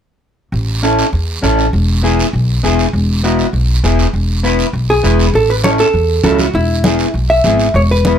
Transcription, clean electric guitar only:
0.83 C#4 E4 A4
1.42 C#4 E4 A4
2.03 B3 E4 G#4
2.63 B3 E4 G#4
3.24 B3 E4 F#4
3.84 B3 E4 G#4
4.43 B3 E4 B4
5.03 B3 E4 B4
5.63 C#4 E4 A4
6.23 C#4 E4 F#4
6.85 B3 E4 G#4
7.44 B3 E4 G#4
8.05 B3 E4 B4

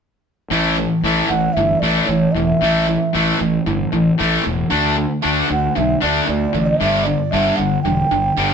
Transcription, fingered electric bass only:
0.51 A1
1.04 A1
1.30 A1
1.57 G1
1.83 A1
2.09 A1
2.35 E1
2.62 A1
3.15 A1
3.41 A1
3.67 G1
3.93 A1
4.21 A1
4.47 E1
4.72 D2
5.25 D2
5.51 D2
5.78 B1
6.04 D2
6.29 D2
6.55 A1
6.81 G1
7.33 G1
7.59 G1
7.85 E1
8.12 G1
8.38 G1

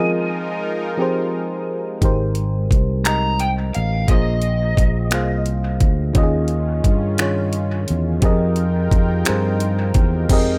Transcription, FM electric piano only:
Already playing: F3 C4 F4 G#4 A#4
0.00 D#5
0.97 F3 C4 G4 G#4
1.01 A#4 C5
2.01 G#3 D#4 G4 A#4
2.05 C5
3.04 G#3 D#4 G4 A#4
3.08 D#5
4.07 A#3 F4 G#4 C5
4.12 D#5
5.10 A#3 F4 G#4 C5
5.14 F5
6.14 D#3 C#4 F4 G4
6.18 D#5
6.23 G#4
7.17 D#3 C#4 F4 G#4
7.22 C#5
8.21 F3 C4 G4 G#4 A#4
8.25 D#5
9.25 F3 C4 G4 G#4 A#4
9.29 C5
10.28 F3 C4 G4 G#4 A#4
10.33 D#5

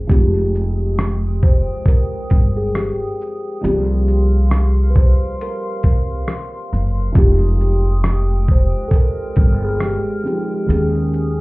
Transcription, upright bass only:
0.10 F1
2.31 G1
3.64 C2
5.84 C2
6.73 F#1
7.16 F1
9.37 G1
10.69 D#2

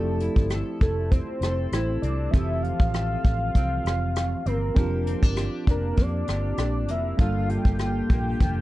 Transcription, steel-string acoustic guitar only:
Already playing: F3 F4 A4
0.21 E4
0.53 A4
0.83 E4
1.13 C4
1.44 A4
1.74 E4
2.04 C4
2.35 F3 A4
2.95 A4
3.57 C4
4.47 C4
4.77 F3 G4
5.07 C4
5.23 D4
5.36 G4
5.68 D4
5.97 A#3
6.28 G4
6.59 D4
6.89 A#3
7.20 G2 F4
7.50 A#3
7.81 F4
8.11 A#3
8.42 F3

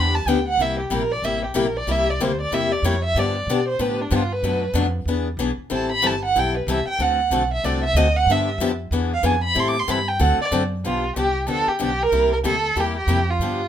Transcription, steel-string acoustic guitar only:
Already playing: D3 F3 B3 D4 G4
0.28 D3 F3 B3 D4 G4
0.59 C3 G3 A#3 E4 G4
0.90 C3 G3 A#3 E4 G4
1.24 C3 G3 A#3 E4 G4
1.54 C3 G3 A#3 E4 G4
1.87 C3 G3 A#3 E4 G4
2.20 C3 G3 A#3 E4 G4
2.52 C3 G3 A#3 E4 G4
2.84 C3 G3 A#3 E4 G4
3.16 D3 F3 B3 D4 G4
3.49 D3 F3 B3 D4 G4
3.79 D3 F3 B3 D4 G4
4.11 D3 F3 B3 D4 G4
4.44 B2 F#3 A3 D4 F#4
4.74 B2 F#3 A3 D4 F#4
5.08 E3 B3 D4 G#4
5.39 E3 B3 D4 G#4
5.70 E3 G3 C4 E4 A4
6.02 E3 G3 C4 E4 A4
6.36 E3 G3 C4 E4 A4
6.68 E3 G3 C4 E4 A4
6.99 D3 A3 C4 F#4 A4
7.31 D3 A3 C4 F#4 A4
7.64 D3 A3 C4 F#4 A4
7.96 D3 A3 C4 F#4 A4
8.30 D3 F3 B3 D4 G4
8.60 D3 F3 B3 D4 G4
8.92 E3 B3 D4 G#4
9.23 E3 B3 D4 G#4
9.55 E3 G3 C4 E4 A4
9.88 E3 G3 C4 E4 A4
10.19 D3 A3 C4 F#4 A4
10.52 D3 A3 C4 F#4 A4
10.85 D3 F3 B3 D4 G4
11.16 D3 F3 B3 D4 G4
11.47 D3 F3 B3 D4 G4
11.79 D3 F3 B3 D4 G4
12.12 C3 G3 A#3 E4 G4
12.44 C3 G3 A#3 E4 G4
12.76 C3 G3 A#3 E4 G4
13.08 C3 G3 A#3 E4 G4
13.41 D3 F3 B3 D4 G4

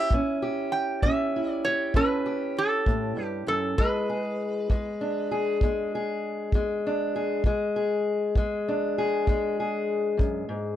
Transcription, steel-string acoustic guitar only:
Already playing: E4 G4
0.13 A2 C#4
0.42 G4
1.05 A2 C#4
1.36 E4
1.67 G4
1.95 A2 C#4
2.26 G4
2.87 A2
3.17 G2
3.47 F#2
3.79 E2 G#3
4.09 G#4
4.70 E2 G#3
5.01 D4
5.31 G#4
5.63 E2 G#3
5.95 G#4
6.55 E2 G#3
6.87 D4
7.16 G#4
7.46 E2 G#3
7.76 G#4
8.36 E2 G#3
8.68 D4
8.98 G#4
9.28 E2 G#3
9.60 G#4
10.17 F#2
10.49 G#2

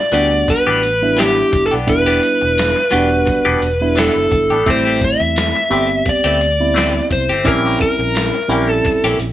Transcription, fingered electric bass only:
0.12 D2
0.67 A1
1.53 G1
1.72 B1
1.88 E1
2.42 E1
2.93 E1
3.46 E1
3.61 E1
4.16 F#1
4.31 G1
4.51 A1
4.67 A1
5.20 E2
5.71 G1
6.24 D2
7.10 C2
7.30 G1
7.45 A#1
7.99 A#1
8.49 A#1
9.04 A#1
9.19 A#1

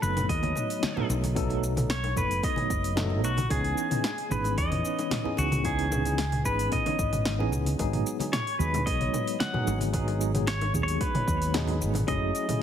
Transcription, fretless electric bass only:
0.02 F#1
0.29 D#2
1.09 B1
2.17 F#1
2.70 F#1
3.23 B1
3.50 C#2
4.31 G#1
4.58 E2
5.38 C#2
6.45 G#1
6.99 G#1
7.52 C#2
7.79 G#1
8.59 D#2
8.87 B1
9.67 G#1
10.74 D#2
11.27 D#2
11.81 G#1
12.08 F#1

